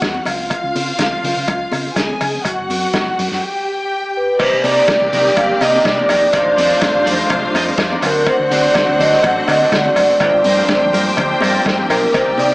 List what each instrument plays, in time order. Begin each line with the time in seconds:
Already playing: string section F#4 F#5
0.01 fingered electric bass E2, kick, snare, closed hi-hat, cowbell, muted conga
0.14 high conga
0.25 fingered electric bass C#2, string section F4 F5, open hi-hat, cowbell, muted conga, low conga
0.40 high conga
0.50 kick, closed hi-hat, cowbell, muted conga
0.64 fingered electric bass C#2
0.75 fingered electric bass C#3, open hi-hat, muted conga, high conga
0.99 fingered electric bass C#2, kick, snare, closed hi-hat, cowbell, muted conga, high conga
1.24 fingered electric bass C#3, open hi-hat, muted conga, low conga
1.37 fingered electric bass C#3
1.48 fingered electric bass C#2, kick, closed hi-hat, cowbell, muted conga, low conga
1.72 fingered electric bass C#3, open hi-hat, cowbell, muted conga, high conga
1.87 high conga
1.96 fingered electric bass C#2, string section G#4 G#5, kick, snare, closed hi-hat, cowbell, muted conga
2.09 high conga
2.21 fingered electric bass C#3, open hi-hat, cowbell, muted conga, low conga
2.35 high conga
2.44 fingered electric bass F#1, string section F#4 F#5, kick, closed hi-hat, cowbell, muted conga
2.58 fingered electric bass F#1
2.69 fingered electric bass F#2, open hi-hat, muted conga, high conga
2.93 fingered electric bass F#1, kick, snare, closed hi-hat, cowbell, high conga
3.19 fingered electric bass F#2, open hi-hat, low conga
3.31 fingered electric bass F#2, snare
3.42 string section G4 G5
4.17 vibraphone B4
4.39 fingered electric bass C2, string section D#3 A#3 C4 D4 G4 D5, clean electric guitar D#4 A#4 D5, vibraphone C5, kick, crash, cowbell
4.53 fingered electric bass C2, muted clean electric guitar stroke
4.64 fingered electric bass C3, clean electric guitar D#4 A#4 D5, vibraphone D5, open hi-hat, muted conga, high conga
4.78 clean electric guitar D#4 A#4 D5
4.88 fingered electric bass C2, kick, snare, closed hi-hat, cowbell, high conga
5.01 fingered electric bass C2, muted clean electric guitar stroke
5.12 fingered electric bass C3, clean electric guitar D#4 A#4 D5, open hi-hat, muted conga, low conga
5.26 muted clean electric guitar stroke, snare
5.37 fingered electric bass G1, vibraphone F5, muted clean electric guitar stroke, kick, closed hi-hat, cowbell, muted conga, low conga
5.51 muted clean electric guitar stroke
5.61 fingered electric bass C3, clean electric guitar D#4 A#4 D#5, vibraphone D#5, open hi-hat, cowbell, muted conga, high conga
5.74 clean electric guitar D#4 A#4 D#5, high conga
5.85 fingered electric bass C3, vibraphone D5, kick, snare, closed hi-hat, cowbell, muted conga
5.98 clean electric guitar D#4 A#4 D5, high conga
6.09 fingered electric bass E1, clean electric guitar D#4 A#4 D5, vibraphone D5, open hi-hat, cowbell, muted conga, low conga
6.22 muted clean electric guitar stroke, high conga
6.32 fingered electric bass F1, string section D#3 G3 A3 D4 F4 C5 F5, clean electric guitar D#4 A4 D5, kick, closed hi-hat, cowbell, muted conga
6.46 fingered electric bass F1, muted clean electric guitar stroke
6.56 fingered electric bass F2, clean electric guitar D#4 A4 D5, open hi-hat, high conga
6.69 clean electric guitar D#4 A4 D5
6.81 fingered electric bass F1, kick, snare, closed hi-hat, cowbell, muted conga, high conga
6.94 fingered electric bass F1, muted clean electric guitar stroke
7.04 fingered electric bass F2, clean electric guitar D#4 A4 D5, open hi-hat, muted conga, low conga
7.19 muted clean electric guitar stroke
7.30 fingered electric bass C2, kick, closed hi-hat, cowbell, muted conga, low conga
7.43 muted clean electric guitar stroke
7.54 fingered electric bass F2, clean electric guitar D#4 A4 D#5, open hi-hat, cowbell, muted conga, high conga
7.67 muted clean electric guitar stroke, high conga
7.78 fingered electric bass F2, muted clean electric guitar stroke, kick, snare, closed hi-hat, cowbell, muted conga
7.90 clean electric guitar D#4 A4 D5, high conga
8.01 fingered electric bass D2, string section D3 F#3 A3 C4 D4 F#4 C5 F#5, clean electric guitar D4 F#4 C5, open hi-hat, cowbell, low conga
8.06 vibraphone A#4
8.14 muted clean electric guitar stroke, high conga
8.26 clean electric guitar D4 F#4 C5, vibraphone C5, kick, closed hi-hat, cowbell, muted conga
8.39 fingered electric bass D2, muted clean electric guitar stroke
8.50 fingered electric bass D3, clean electric guitar D4 F#4 C5, vibraphone D5, open hi-hat, high conga
8.63 clean electric guitar D4 F#4 C5
8.74 fingered electric bass D2, muted clean electric guitar stroke, kick, snare, closed hi-hat, cowbell, muted conga, high conga
8.88 fingered electric bass D2, muted clean electric guitar stroke
8.99 fingered electric bass D3, clean electric guitar D4 F#4 C5, vibraphone D#5, open hi-hat, muted conga, low conga
9.13 muted clean electric guitar stroke, snare
9.23 fingered electric bass A1, vibraphone F#5, kick, closed hi-hat, cowbell, muted conga, low conga
9.37 muted clean electric guitar stroke
9.47 fingered electric bass D3, clean electric guitar D4 F#4 D5, vibraphone D#5, open hi-hat, cowbell, muted conga, high conga
9.61 clean electric guitar D4 F#4 D5, high conga
9.72 fingered electric bass D3, vibraphone D5, muted clean electric guitar stroke, kick, snare, closed hi-hat, cowbell, muted conga
9.85 muted clean electric guitar stroke, high conga
9.96 fingered electric bass F#1, vibraphone D5, open hi-hat, cowbell, low conga
10.09 muted clean electric guitar stroke, high conga
10.20 fingered electric bass G1, string section F3 A#3 C4 D4 G4 C5 G5, clean electric guitar F4 A#4 C5, kick, closed hi-hat, cowbell
10.34 fingered electric bass G1, muted clean electric guitar stroke
10.44 fingered electric bass G2, clean electric guitar F4 A#4 C5, open hi-hat, muted conga, high conga
10.57 clean electric guitar F4 A#4 C5
10.68 fingered electric bass G1, kick, snare, closed hi-hat, cowbell, muted conga, high conga
10.81 fingered electric bass G1, muted clean electric guitar stroke
10.93 fingered electric bass G2, clean electric guitar F4 A#4 C5, open hi-hat, muted conga, low conga
11.06 muted clean electric guitar stroke
11.17 fingered electric bass D2, muted clean electric guitar stroke, kick, closed hi-hat, cowbell, low conga
11.30 muted clean electric guitar stroke
11.41 fingered electric bass G2, clean electric guitar F4 A#4 D5, open hi-hat, cowbell, muted conga, high conga
11.54 clean electric guitar F4 A#4 D5, high conga
11.65 fingered electric bass G2, kick, snare, closed hi-hat, cowbell, muted conga
11.78 muted clean electric guitar stroke, high conga
11.89 fingered electric bass B1, clean electric guitar F4 A#4 C5, vibraphone A#4, open hi-hat, cowbell, muted conga, low conga
12.03 muted clean electric guitar stroke, high conga
12.13 fingered electric bass C2, string section D#3 D#4 D5 G5, clean electric guitar D#4 A#4 D5, vibraphone C5, kick, closed hi-hat, cowbell, muted conga
12.27 fingered electric bass C2, muted clean electric guitar stroke
12.38 fingered electric bass C3, clean electric guitar D#4 A#4 D5, vibraphone D5, open hi-hat, high conga
12.51 clean electric guitar D5